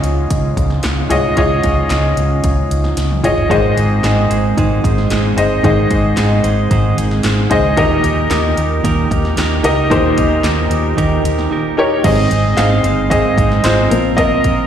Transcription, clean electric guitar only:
3.50 3.77 G#2 medium
3.50 3.77 D#3 medium
3.50 3.77 G#3 medium
3.50 3.77 D#4 medium
3.50 3.76 G#4 medium
3.50 3.75 C5 medium
3.77 4.02 G#3 soft
3.77 4.03 D#4 soft
3.77 4.04 G#4 soft
3.77 4.04 C5 medium
4.03 4.31 G#3 medium
4.03 4.31 D#4 medium
4.03 4.30 G#4 medium
4.03 4.29 C5 medium
4.30 4.57 G#3 soft
4.30 4.57 D#4 soft
4.30 4.57 G#4 soft
4.30 4.57 C5 medium
4.57 4.84 G#2 medium
4.57 4.84 D#3 medium
4.57 4.84 G#3 medium
4.57 4.84 D#4 medium
4.57 4.83 G#4 medium
4.57 4.83 C5 medium
4.84 5.09 G#3 soft
4.84 5.10 D#4 soft
4.84 5.11 G#4 soft
4.84 5.11 C5 medium
5.10 5.37 G#3 medium
5.10 5.37 D#4 medium
5.10 5.36 G#4 medium
5.10 5.36 C5 medium
5.37 5.63 G#3 soft
5.37 5.63 D#4 soft
5.37 5.64 G#4 soft
5.37 5.64 C5 soft
5.63 5.91 G#2 medium
5.63 5.91 D#3 medium
5.63 5.91 G#3 medium
5.63 5.91 D#4 medium
5.63 5.90 G#4 medium
5.63 5.89 C5 medium
5.90 6.15 G#3 soft
5.90 6.17 D#4 soft
5.90 6.17 G#4 soft
5.90 6.17 C5 medium
6.17 6.44 G#3 medium
6.17 6.44 D#4 medium
6.17 6.43 G#4 medium
6.17 6.42 C5 medium
6.43 6.70 G#3 soft
6.43 6.70 D#4 soft
6.43 6.70 G#4 soft
6.43 6.71 C5 medium
6.70 6.97 G#2 medium
6.70 6.97 D#3 medium
6.70 6.98 G#3 medium
6.70 6.97 D#4 medium
6.70 6.97 G#4 medium
6.70 6.96 C5 medium
6.97 7.22 G#3 soft
6.97 7.23 D#4 soft
6.97 7.24 G#4 medium
6.97 7.24 C5 medium
7.24 7.51 G#3 medium
7.24 7.50 D#4 medium
7.24 7.50 G#4 medium
7.24 7.48 C5 medium
7.50 7.77 G#3 soft
7.50 7.76 D#4 soft
7.50 7.77 G#4 medium
7.50 7.77 C5 medium
7.77 8.04 D#3 medium
7.77 8.04 A#3 medium
7.77 8.04 D#4 medium
7.77 8.03 G4 medium
7.77 8.02 A#4 loud
8.03 8.30 D#4 soft
8.03 8.31 G4 medium
8.03 8.30 A#4 medium
8.30 8.57 A#3 medium
8.30 8.58 D#4 medium
8.30 8.57 G4 medium
8.30 8.55 A#4 medium
8.57 8.83 D#4 soft
8.57 8.84 G4 soft
8.57 8.84 A#4 medium
8.84 9.11 D#3 medium
8.84 9.11 A#3 medium
8.84 9.11 D#4 medium
8.84 9.10 G4 loud
8.84 9.09 A#4 loud
9.10 9.36 D#4 soft
9.10 9.37 G4 medium
9.10 9.37 A#4 medium
9.36 9.64 A#3 medium
9.36 9.64 D#4 medium
9.36 9.63 G4 medium
9.36 9.62 A#4 medium
9.64 9.90 D#4 soft
9.64 9.90 G4 soft
9.64 9.90 A#4 medium
9.90 10.17 D#3 medium
9.90 10.17 A#3 medium
9.90 10.18 D#4 medium
9.90 10.17 G4 medium
9.90 10.15 A#4 medium
10.17 10.43 D#4 soft
10.17 10.44 G4 soft
10.17 10.44 A#4 medium
10.43 10.71 A#3 medium
10.43 10.71 D#4 medium
10.43 10.70 G4 medium
10.43 10.69 A#4 medium
10.70 10.97 D#4 soft
10.70 10.97 G4 medium
10.70 10.97 A#4 medium
10.97 11.24 D#3 medium
10.97 11.24 A#3 medium
10.97 11.24 D#4 medium
10.97 11.24 G4 loud
10.97 11.22 A#4 loud
11.24 11.50 D#4 soft
11.24 11.51 G4 medium
11.24 11.51 A#4 medium
11.50 11.77 A#3 medium
11.50 11.78 D#4 medium
11.50 11.77 G4 medium
11.50 11.76 A#4 medium
11.77 12.04 D#4 soft
11.77 12.05 G4 medium
11.77 12.04 A#4 medium
12.04 12.31 G#2 medium
12.04 12.31 D#3 medium
12.04 12.31 G#3 medium
12.04 12.31 C4 medium
12.04 12.30 D#4 medium
12.04 12.29 C5 medium
12.30 12.55 G#3 soft
12.30 12.56 C4 soft
12.30 12.57 D#4 medium
12.30 12.57 C5 medium
12.56 12.84 G#3 medium
12.56 12.84 C4 medium
12.56 12.83 D#4 medium
12.56 12.82 C5 medium
12.83 13.10 G#3 soft
12.83 13.10 C4 soft
12.83 13.10 D#4 soft
12.83 13.10 C5 medium
13.10 13.37 G#2 medium
13.10 13.37 D#3 medium
13.10 13.38 G#3 medium
13.10 13.37 C4 medium
13.10 13.36 D#4 medium
13.10 13.35 C5 loud
13.36 13.62 G#3 soft
13.36 13.63 C4 soft
13.36 13.64 D#4 medium
13.36 13.64 C5 medium
13.63 13.90 G#3 medium
13.63 13.91 C4 medium
13.63 13.91 D#4 medium
13.63 13.90 C5 medium
13.90 14.16 C4 soft
13.90 14.17 F4 medium
13.90 14.17 A#4 medium
14.17 14.44 A#3 medium
14.17 14.44 C4 medium
14.17 14.44 F4 medium
14.17 14.42 A#4 loud
14.43 14.67 C4 soft
14.43 14.67 F4 soft
14.43 14.67 A#4 medium

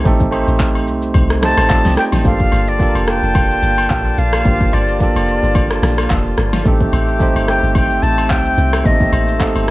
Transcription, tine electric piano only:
0.00 0.03 A3 medium
0.00 0.27 A3 medium
0.00 0.04 C4 medium
0.00 0.05 D#4 medium
0.00 0.06 G4 medium
0.00 0.07 A4 medium
0.00 0.35 C5 loud
0.04 0.27 C4 medium
0.04 0.28 D#4 medium
0.04 0.28 G4 medium
0.04 0.29 A4 medium
0.31 1.20 A3 medium
0.31 1.21 C4 medium
0.31 1.21 D#4 medium
0.31 1.22 G4 medium
0.31 1.22 C5 loud
1.41 2.09 A3 medium
1.41 2.10 C4 medium
1.41 2.10 D#4 medium
1.41 1.71 G4 medium
1.41 1.71 C5 medium
1.70 1.85 F4 medium
1.70 1.85 D5 medium
1.86 1.97 G4 medium
1.86 1.97 D#5 medium
1.98 2.12 G5 medium
2.13 2.39 C5 medium
2.13 2.39 A5 medium
2.23 2.31 A3 medium
2.23 2.70 D4 medium
2.23 2.70 F4 medium
2.23 2.71 G4 medium
2.23 2.71 A4 medium
2.30 2.73 A#3 medium
2.79 3.68 A#3 medium
2.79 3.69 D4 medium
2.79 3.69 F4 medium
2.79 3.70 G4 medium
2.79 2.88 A4 medium
2.89 3.73 A#4 medium
4.44 4.90 A#3 medium
4.44 4.90 D4 medium
4.44 4.91 F4 medium
4.44 4.91 G4 medium
4.44 4.92 C5 medium
4.99 5.88 A#3 medium
4.99 5.89 D4 medium
4.99 5.89 F4 medium
4.99 5.90 G4 medium
4.99 5.90 A4 medium
6.64 7.10 A3 medium
6.64 6.72 B3 medium
6.64 7.11 D#4 medium
6.64 7.11 G4 medium
6.64 7.12 A4 medium
6.72 7.14 C4 medium
7.19 8.08 A3 medium
7.19 8.09 C4 medium
7.19 8.09 D#4 medium
7.19 8.10 G4 medium
7.19 8.10 C5 loud
8.84 9.30 A3 medium
8.84 8.93 A#3 medium
8.84 9.31 D#4 medium
8.84 9.31 G4 medium
8.84 9.32 A4 medium
8.92 9.34 C4 medium
9.39 9.71 A3 medium
9.39 9.71 C4 medium
9.39 9.71 D#4 medium
9.39 9.71 G4 medium
9.39 9.71 A4 medium

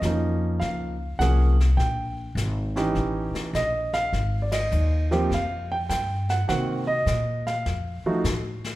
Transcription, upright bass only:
0.02 0.59 F2 medium
0.61 1.18 C#2 medium
1.19 1.76 C2 medium
1.77 2.35 A#1 medium
2.35 2.93 G#1 medium
2.95 3.32 A1 medium
3.34 muted upright bass stroke soft
3.53 4.11 A#1 medium
4.13 4.70 G#1 medium
4.72 5.29 D#2 medium
5.31 5.88 F2 medium
5.89 6.46 G2 loud
6.49 7.06 C3 medium
7.06 7.64 A#2 medium
7.66 8.02 F2 medium
8.04 muted upright bass stroke soft
8.24 8.76 A2 medium

